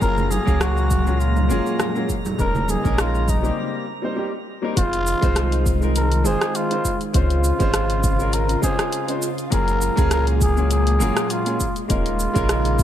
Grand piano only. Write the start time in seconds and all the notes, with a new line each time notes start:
0.00 F#3 A#3 C#4 F4 G#4
0.45 F#3 A#3 C#4 G#4 F5
1.05 F#3 A#3 C#4 F4 G#4
1.48 F#3 A#3 C#4 F4 G#4
1.94 F#3 A#3 C#4 F4 G#4
2.38 G#3 A#3 C#4 D#4 A#4
2.83 G#3 A#3 C#4 D#4 A#4
3.42 G3 A#3 C4 D#4 G4
4.02 G3 A#3 C4 D#4 C5
4.16 G3 A#3 C4 D#4 G4
4.62 G3 A#3 C4 D#4 A#4
4.75 G#3 C4 D#4 F4 C5
5.21 G#3 C4 D#4 F4 C5
5.81 G#3 C4 D#4 F4 A#4
6.24 G#3 C4 D#4 F4 C5
6.69 G#3 C4 D#4 F4 C5
7.13 G#3 C4 C#4 F4 C5
7.59 G#3 C4 C#4 F4 C5
8.18 G#3 C4 C#4 F4 A#4
8.61 G#3 C4 C#4 F4 C5
9.07 G#3 C4 C#4 F4 C5
9.50 F#3 A#3 C#4 F4 G#4
9.96 F#3 A#3 C#4 F4 G#4
10.56 F#3 A#3 C#4 F4 G#4
10.99 F#3 A#3 C#4 F4 G#4
11.45 F#3 A#3 C#4 F4 G#4
11.88 G#3 A#3 C#4 D#4 A#4
12.34 G#3 A#3 C#4 D#4 A#4